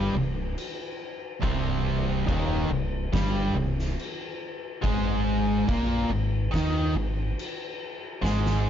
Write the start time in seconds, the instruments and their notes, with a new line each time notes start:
Already playing: fingered electric bass G1, distorted electric guitar G2 G3
0.14 fingered electric bass C1, distorted electric guitar C2
0.58 crash
1.40 fingered electric bass C1, distorted electric guitar C2 C3, kick, crash
2.26 fingered electric bass D#1, distorted electric guitar D#2 D#3, kick, crash
2.69 fingered electric bass C1, distorted electric guitar C2
3.13 fingered electric bass G1, distorted electric guitar G2 G3, kick, snare, crash
3.54 fingered electric bass C1, distorted electric guitar C2
3.79 snare
3.99 crash
4.83 fingered electric bass G#1, distorted electric guitar G#2 G#3, kick, crash
5.68 fingered electric bass A#1, distorted electric guitar A#2 A#3, kick, crash
6.09 fingered electric bass G#1, distorted electric guitar G#2
6.54 fingered electric bass D#2, distorted electric guitar D#3 D#4, kick, snare, crash
6.95 fingered electric bass G#1, distorted electric guitar G#2
7.39 crash
8.23 fingered electric bass G#1, distorted electric guitar G#2 G#3, snare
8.46 snare